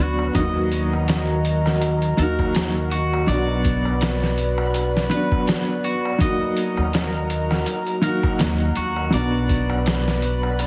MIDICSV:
0, 0, Header, 1, 7, 480
1, 0, Start_track
1, 0, Key_signature, -6, "minor"
1, 0, Tempo, 731707
1, 230, Time_signature, 4, 2, 24, 8
1, 6999, End_track
2, 0, Start_track
2, 0, Title_t, "Ambient pad"
2, 0, Program_c, 0, 92
2, 0, Note_on_c, 0, 66, 90
2, 0, Note_on_c, 0, 71, 74
2, 0, Note_on_c, 0, 74, 77
2, 0, Note_on_c, 0, 83, 93
2, 208, Note_off_c, 0, 71, 0
2, 208, Note_off_c, 0, 83, 0
2, 209, Note_off_c, 0, 74, 0
2, 224, Note_on_c, 0, 75, 77
2, 226, Note_on_c, 0, 82, 96
2, 228, Note_on_c, 0, 70, 77
2, 2128, Note_off_c, 0, 75, 0
2, 2129, Note_off_c, 0, 82, 0
2, 2130, Note_off_c, 0, 70, 0
2, 2152, Note_on_c, 0, 74, 73
2, 2154, Note_on_c, 0, 83, 95
2, 2157, Note_on_c, 0, 71, 77
2, 4052, Note_off_c, 0, 74, 0
2, 4053, Note_off_c, 0, 83, 0
2, 4054, Note_off_c, 0, 71, 0
2, 4069, Note_on_c, 0, 70, 81
2, 4069, Note_on_c, 0, 75, 78
2, 4072, Note_on_c, 0, 82, 95
2, 5970, Note_off_c, 0, 70, 0
2, 5970, Note_off_c, 0, 75, 0
2, 5972, Note_off_c, 0, 82, 0
2, 5982, Note_on_c, 0, 71, 83
2, 5983, Note_on_c, 0, 83, 90
2, 5985, Note_on_c, 0, 74, 79
2, 6999, Note_off_c, 0, 66, 0
2, 6999, Note_off_c, 0, 71, 0
2, 6999, Note_off_c, 0, 74, 0
2, 6999, Note_off_c, 0, 83, 0
2, 6999, End_track
3, 0, Start_track
3, 0, Title_t, "Clean electric guitar"
3, 0, Program_c, 1, 27
3, 0, Note_on_c, 1, 66, 71
3, 217, Note_off_c, 1, 66, 0
3, 230, Note_on_c, 1, 75, 73
3, 1169, Note_off_c, 1, 75, 0
3, 1434, Note_on_c, 1, 70, 77
3, 1662, Note_off_c, 1, 70, 0
3, 1914, Note_on_c, 1, 66, 78
3, 2141, Note_off_c, 1, 66, 0
3, 2151, Note_on_c, 1, 74, 75
3, 3089, Note_off_c, 1, 74, 0
3, 3353, Note_on_c, 1, 71, 77
3, 3581, Note_off_c, 1, 71, 0
3, 3834, Note_on_c, 1, 66, 79
3, 4062, Note_off_c, 1, 66, 0
3, 4076, Note_on_c, 1, 75, 75
3, 5012, Note_off_c, 1, 75, 0
3, 5271, Note_on_c, 1, 70, 77
3, 5500, Note_off_c, 1, 70, 0
3, 5752, Note_on_c, 1, 66, 77
3, 5980, Note_off_c, 1, 66, 0
3, 5994, Note_on_c, 1, 74, 80
3, 6931, Note_off_c, 1, 74, 0
3, 6999, End_track
4, 0, Start_track
4, 0, Title_t, "Upright piano"
4, 0, Program_c, 2, 0
4, 0, Control_c, 2, 64, 127
4, 0, Note_on_c, 2, 54, 71
4, 0, Note_on_c, 2, 59, 61
4, 0, Note_on_c, 2, 62, 65
4, 6, Note_on_c, 2, 66, 82
4, 205, Note_off_c, 2, 54, 0
4, 207, Note_off_c, 2, 59, 0
4, 209, Note_off_c, 2, 62, 0
4, 212, Note_off_c, 2, 66, 0
4, 225, Note_on_c, 2, 54, 77
4, 234, Note_on_c, 2, 58, 67
4, 238, Control_c, 2, 64, 0
4, 244, Note_on_c, 2, 63, 68
4, 256, Note_on_c, 2, 66, 83
4, 374, Control_c, 2, 64, 127
4, 1402, Note_off_c, 2, 54, 0
4, 1407, Note_off_c, 2, 58, 0
4, 1412, Note_off_c, 2, 63, 0
4, 1417, Note_off_c, 2, 66, 0
4, 1424, Note_on_c, 2, 54, 83
4, 1434, Note_on_c, 2, 58, 78
4, 1445, Note_on_c, 2, 63, 71
4, 1456, Note_on_c, 2, 66, 94
4, 2122, Note_off_c, 2, 54, 0
4, 2127, Note_off_c, 2, 58, 0
4, 2132, Note_off_c, 2, 63, 0
4, 2138, Note_off_c, 2, 66, 0
4, 2145, Note_on_c, 2, 54, 82
4, 2155, Note_on_c, 2, 59, 68
4, 2157, Control_c, 2, 64, 0
4, 2166, Note_on_c, 2, 62, 74
4, 2178, Note_on_c, 2, 66, 82
4, 2285, Control_c, 2, 64, 127
4, 3322, Note_off_c, 2, 54, 0
4, 3327, Note_off_c, 2, 59, 0
4, 3332, Note_off_c, 2, 62, 0
4, 3339, Note_off_c, 2, 66, 0
4, 3343, Note_on_c, 2, 54, 82
4, 3354, Note_on_c, 2, 59, 77
4, 3364, Note_on_c, 2, 62, 81
4, 3377, Note_on_c, 2, 66, 88
4, 4041, Note_off_c, 2, 54, 0
4, 4046, Note_off_c, 2, 59, 0
4, 4052, Note_off_c, 2, 62, 0
4, 4056, Note_on_c, 2, 54, 79
4, 4058, Note_off_c, 2, 66, 0
4, 4068, Note_on_c, 2, 58, 68
4, 4077, Note_on_c, 2, 63, 72
4, 4080, Control_c, 2, 64, 0
4, 4087, Note_on_c, 2, 66, 87
4, 4200, Control_c, 2, 64, 127
4, 5238, Note_off_c, 2, 54, 0
4, 5243, Note_off_c, 2, 58, 0
4, 5248, Note_off_c, 2, 63, 0
4, 5253, Note_off_c, 2, 66, 0
4, 5258, Note_on_c, 2, 54, 87
4, 5266, Note_on_c, 2, 58, 75
4, 5278, Note_on_c, 2, 63, 79
4, 5289, Note_on_c, 2, 66, 92
4, 5959, Note_off_c, 2, 54, 0
4, 5963, Note_off_c, 2, 58, 0
4, 5969, Note_off_c, 2, 63, 0
4, 5972, Note_on_c, 2, 54, 74
4, 5974, Note_off_c, 2, 66, 0
4, 5983, Note_on_c, 2, 59, 74
4, 5993, Note_on_c, 2, 62, 73
4, 5998, Control_c, 2, 64, 0
4, 6005, Note_on_c, 2, 66, 87
4, 6123, Control_c, 2, 64, 127
4, 6999, Note_off_c, 2, 54, 0
4, 6999, Note_off_c, 2, 59, 0
4, 6999, Note_off_c, 2, 62, 0
4, 6999, Note_off_c, 2, 66, 0
4, 6999, End_track
5, 0, Start_track
5, 0, Title_t, "Upright bass"
5, 0, Program_c, 3, 32
5, 0, Note_on_c, 3, 38, 101
5, 206, Note_off_c, 3, 38, 0
5, 229, Note_on_c, 3, 39, 100
5, 1409, Note_off_c, 3, 39, 0
5, 1433, Note_on_c, 3, 39, 86
5, 2131, Note_off_c, 3, 39, 0
5, 2152, Note_on_c, 3, 35, 101
5, 3331, Note_off_c, 3, 35, 0
5, 4446, Note_on_c, 3, 39, 76
5, 5010, Note_off_c, 3, 39, 0
5, 5509, Note_on_c, 3, 39, 106
5, 5724, Note_off_c, 3, 39, 0
5, 5749, Note_on_c, 3, 39, 84
5, 5964, Note_off_c, 3, 39, 0
5, 5986, Note_on_c, 3, 35, 104
5, 6999, Note_off_c, 3, 35, 0
5, 6999, End_track
6, 0, Start_track
6, 0, Title_t, "Darbuka"
6, 122, Note_on_c, 9, 63, 77
6, 188, Note_off_c, 9, 63, 0
6, 227, Note_on_c, 9, 63, 64
6, 293, Note_off_c, 9, 63, 0
6, 365, Note_on_c, 9, 63, 37
6, 430, Note_off_c, 9, 63, 0
6, 612, Note_on_c, 9, 63, 69
6, 678, Note_off_c, 9, 63, 0
6, 712, Note_on_c, 9, 63, 68
6, 778, Note_off_c, 9, 63, 0
6, 851, Note_on_c, 9, 63, 38
6, 916, Note_off_c, 9, 63, 0
6, 1088, Note_on_c, 9, 63, 81
6, 1153, Note_off_c, 9, 63, 0
6, 1190, Note_on_c, 9, 63, 71
6, 1256, Note_off_c, 9, 63, 0
6, 1322, Note_on_c, 9, 63, 36
6, 1387, Note_off_c, 9, 63, 0
6, 1570, Note_on_c, 9, 63, 75
6, 1636, Note_off_c, 9, 63, 0
6, 1676, Note_on_c, 9, 63, 60
6, 1742, Note_off_c, 9, 63, 0
6, 1807, Note_on_c, 9, 63, 38
6, 1872, Note_off_c, 9, 63, 0
6, 2057, Note_on_c, 9, 63, 82
6, 2122, Note_off_c, 9, 63, 0
6, 2160, Note_on_c, 9, 63, 65
6, 2226, Note_off_c, 9, 63, 0
6, 2285, Note_on_c, 9, 63, 45
6, 2351, Note_off_c, 9, 63, 0
6, 2527, Note_on_c, 9, 63, 72
6, 2593, Note_off_c, 9, 63, 0
6, 2636, Note_on_c, 9, 63, 61
6, 2701, Note_off_c, 9, 63, 0
6, 2768, Note_on_c, 9, 63, 41
6, 2834, Note_off_c, 9, 63, 0
6, 3003, Note_on_c, 9, 63, 83
6, 3069, Note_off_c, 9, 63, 0
6, 3116, Note_on_c, 9, 63, 69
6, 3181, Note_off_c, 9, 63, 0
6, 3251, Note_on_c, 9, 63, 35
6, 3317, Note_off_c, 9, 63, 0
6, 3490, Note_on_c, 9, 63, 76
6, 3555, Note_off_c, 9, 63, 0
6, 3593, Note_on_c, 9, 63, 63
6, 3659, Note_off_c, 9, 63, 0
6, 3729, Note_on_c, 9, 63, 37
6, 3795, Note_off_c, 9, 63, 0
6, 3971, Note_on_c, 9, 63, 77
6, 4036, Note_off_c, 9, 63, 0
6, 4075, Note_on_c, 9, 63, 62
6, 4141, Note_off_c, 9, 63, 0
6, 4206, Note_on_c, 9, 63, 39
6, 4272, Note_off_c, 9, 63, 0
6, 4444, Note_on_c, 9, 63, 76
6, 4509, Note_off_c, 9, 63, 0
6, 4553, Note_on_c, 9, 63, 68
6, 4619, Note_off_c, 9, 63, 0
6, 4690, Note_on_c, 9, 63, 44
6, 4755, Note_off_c, 9, 63, 0
6, 4924, Note_on_c, 9, 63, 85
6, 4990, Note_off_c, 9, 63, 0
6, 5029, Note_on_c, 9, 63, 67
6, 5094, Note_off_c, 9, 63, 0
6, 5167, Note_on_c, 9, 63, 37
6, 5232, Note_off_c, 9, 63, 0
6, 5401, Note_on_c, 9, 63, 87
6, 5467, Note_off_c, 9, 63, 0
6, 5504, Note_on_c, 9, 63, 68
6, 5569, Note_off_c, 9, 63, 0
6, 5641, Note_on_c, 9, 63, 40
6, 5707, Note_off_c, 9, 63, 0
6, 5880, Note_on_c, 9, 63, 81
6, 5946, Note_off_c, 9, 63, 0
6, 5986, Note_on_c, 9, 63, 65
6, 6051, Note_off_c, 9, 63, 0
6, 6121, Note_on_c, 9, 63, 36
6, 6187, Note_off_c, 9, 63, 0
6, 6360, Note_on_c, 9, 63, 81
6, 6426, Note_off_c, 9, 63, 0
6, 6471, Note_on_c, 9, 63, 65
6, 6536, Note_off_c, 9, 63, 0
6, 6611, Note_on_c, 9, 63, 39
6, 6677, Note_off_c, 9, 63, 0
6, 6844, Note_on_c, 9, 63, 74
6, 6909, Note_off_c, 9, 63, 0
6, 6951, Note_on_c, 9, 63, 70
6, 6999, Note_off_c, 9, 63, 0
6, 6999, End_track
7, 0, Start_track
7, 0, Title_t, "Drums"
7, 228, Note_on_c, 9, 36, 102
7, 228, Note_on_c, 9, 42, 82
7, 294, Note_off_c, 9, 36, 0
7, 294, Note_off_c, 9, 42, 0
7, 469, Note_on_c, 9, 42, 70
7, 535, Note_off_c, 9, 42, 0
7, 708, Note_on_c, 9, 42, 78
7, 718, Note_on_c, 9, 38, 105
7, 774, Note_off_c, 9, 42, 0
7, 784, Note_off_c, 9, 38, 0
7, 950, Note_on_c, 9, 42, 64
7, 1015, Note_off_c, 9, 42, 0
7, 1095, Note_on_c, 9, 38, 41
7, 1161, Note_off_c, 9, 38, 0
7, 1191, Note_on_c, 9, 42, 86
7, 1256, Note_off_c, 9, 42, 0
7, 1324, Note_on_c, 9, 42, 46
7, 1390, Note_off_c, 9, 42, 0
7, 1430, Note_on_c, 9, 42, 65
7, 1496, Note_off_c, 9, 42, 0
7, 1566, Note_on_c, 9, 36, 89
7, 1632, Note_off_c, 9, 36, 0
7, 1670, Note_on_c, 9, 42, 90
7, 1680, Note_on_c, 9, 38, 120
7, 1736, Note_off_c, 9, 42, 0
7, 1746, Note_off_c, 9, 38, 0
7, 1912, Note_on_c, 9, 42, 67
7, 1977, Note_off_c, 9, 42, 0
7, 2151, Note_on_c, 9, 42, 82
7, 2217, Note_off_c, 9, 42, 0
7, 2392, Note_on_c, 9, 36, 92
7, 2392, Note_on_c, 9, 42, 70
7, 2457, Note_off_c, 9, 42, 0
7, 2458, Note_off_c, 9, 36, 0
7, 2630, Note_on_c, 9, 42, 80
7, 2640, Note_on_c, 9, 38, 101
7, 2695, Note_off_c, 9, 42, 0
7, 2705, Note_off_c, 9, 38, 0
7, 2777, Note_on_c, 9, 38, 44
7, 2842, Note_off_c, 9, 38, 0
7, 2871, Note_on_c, 9, 42, 67
7, 2936, Note_off_c, 9, 42, 0
7, 3111, Note_on_c, 9, 42, 86
7, 3176, Note_off_c, 9, 42, 0
7, 3259, Note_on_c, 9, 38, 48
7, 3324, Note_off_c, 9, 38, 0
7, 3351, Note_on_c, 9, 42, 69
7, 3417, Note_off_c, 9, 42, 0
7, 3486, Note_on_c, 9, 36, 90
7, 3552, Note_off_c, 9, 36, 0
7, 3590, Note_on_c, 9, 42, 87
7, 3600, Note_on_c, 9, 38, 122
7, 3656, Note_off_c, 9, 42, 0
7, 3666, Note_off_c, 9, 38, 0
7, 3832, Note_on_c, 9, 42, 63
7, 3897, Note_off_c, 9, 42, 0
7, 4070, Note_on_c, 9, 36, 109
7, 4070, Note_on_c, 9, 42, 81
7, 4136, Note_off_c, 9, 36, 0
7, 4136, Note_off_c, 9, 42, 0
7, 4307, Note_on_c, 9, 42, 70
7, 4373, Note_off_c, 9, 42, 0
7, 4548, Note_on_c, 9, 42, 83
7, 4558, Note_on_c, 9, 38, 102
7, 4614, Note_off_c, 9, 42, 0
7, 4624, Note_off_c, 9, 38, 0
7, 4788, Note_on_c, 9, 42, 69
7, 4854, Note_off_c, 9, 42, 0
7, 4932, Note_on_c, 9, 38, 43
7, 4997, Note_off_c, 9, 38, 0
7, 5025, Note_on_c, 9, 42, 88
7, 5091, Note_off_c, 9, 42, 0
7, 5159, Note_on_c, 9, 42, 43
7, 5225, Note_off_c, 9, 42, 0
7, 5264, Note_on_c, 9, 42, 71
7, 5330, Note_off_c, 9, 42, 0
7, 5402, Note_on_c, 9, 36, 96
7, 5467, Note_off_c, 9, 36, 0
7, 5505, Note_on_c, 9, 42, 92
7, 5515, Note_on_c, 9, 38, 115
7, 5570, Note_off_c, 9, 42, 0
7, 5580, Note_off_c, 9, 38, 0
7, 5743, Note_on_c, 9, 42, 64
7, 5809, Note_off_c, 9, 42, 0
7, 5986, Note_on_c, 9, 42, 82
7, 6052, Note_off_c, 9, 42, 0
7, 6227, Note_on_c, 9, 36, 97
7, 6227, Note_on_c, 9, 42, 70
7, 6292, Note_off_c, 9, 42, 0
7, 6293, Note_off_c, 9, 36, 0
7, 6468, Note_on_c, 9, 42, 82
7, 6478, Note_on_c, 9, 38, 107
7, 6534, Note_off_c, 9, 42, 0
7, 6543, Note_off_c, 9, 38, 0
7, 6611, Note_on_c, 9, 38, 46
7, 6677, Note_off_c, 9, 38, 0
7, 6706, Note_on_c, 9, 42, 70
7, 6772, Note_off_c, 9, 42, 0
7, 6947, Note_on_c, 9, 42, 85
7, 6999, Note_off_c, 9, 42, 0
7, 6999, End_track
0, 0, End_of_file